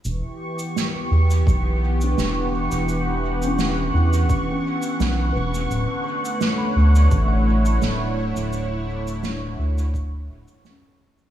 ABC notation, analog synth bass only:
X:1
M:4/4
L:1/16
Q:"Swing 16ths" 1/4=85
K:Edor
V:1 name="Analog synth bass" clef=bass
E,,, z4 z E,,2 B,,,4 E,,,3 E,,,- | E,,,6 E,,2 z4 B,,,2 E,,,2 | D,,, z4 z D,,2 A,,,4 D,,,3 D,,,- | D,,,6 D,,4 D,,, z4 z |]